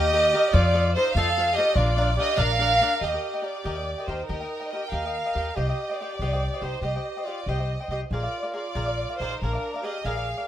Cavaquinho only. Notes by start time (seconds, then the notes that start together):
0.13 G4 A#4 D#5 F5
0.33 G4 A#4 D#5 F5
0.53 F4 A4 C5 D#5
0.74 F4 A4 C5 D#5
0.96 F4 A4 C5 D#5
1.17 F4 A4 C5 D#5
1.38 F4 A4 C5 D#5
1.57 F4 A4 C5 D#5
1.77 D4 A#4 D5 F5
1.97 D4 A#4 D5 F5
2.18 D4 A#4 D5 F5
2.36 D4 A#4 D5 F5
2.59 D4 A#4 D5 F5
2.81 D4 A#4 D5 F5
3.01 G4 A#4 D#5 G5
3.13 A#4 D#5 G5
3.34 A#4 D#5 G5
3.42 G4 A#4 D#5 G5
3.64 G4 A#4 D#5 G5
3.76 A#4 D#5 G5
3.98 A#4 D#5 G5
4.08 G4 A#4 D#5 G5
4.29 G4 A#4 D#5 G5
4.40 A#4 D#5 G5
4.60 A#4 D#5 G5
4.73 G4 A#4 D#5 G5
4.92 G4 A#4 D#5 G5
5.05 A#4 D#5 G5
5.25 A#4 D#5 G5
5.35 G4 A#4 D#5 G5
5.56 G4 C5 D#5 G5
5.69 C5 D#5 G5
5.90 C5 D#5 G5
6.01 G4 C5 D#5 G5
6.21 G4 C5 D#5 G5
6.33 C5 D#5 G5
6.53 C5 D#5 G5
6.62 G4 C5 D#5 G5
6.83 G4 C5 D#5 G5
6.96 C5 D#5 G5
7.17 C5 D#5 G5
7.27 G4 C5 D#5 G5
7.48 G4 C5 D#5 G5
7.58 C5 D#5 G5
7.80 C5 D#5 G5
7.91 G4 C5 D#5 G5
8.13 G#4 A#4 D5 F5
8.23 A#4 D5 F5
8.43 A#4 D5 F5
8.53 G#4 A#4 D5 F5
8.75 G#4 A#4 D5 F5
8.86 A#4 D5 F5
9.09 A#4 D5 F5
9.21 G#4 A#4 D5 F5
9.43 G#4 A#4 D5 F5
9.53 A#4 D5 F5
9.74 A#4 D5 F5
9.83 G#4 A#4 D5 F5
10.05 G#4 A#4 D5 F5
10.16 A#4 D5 F5
10.37 A#4 D5 F5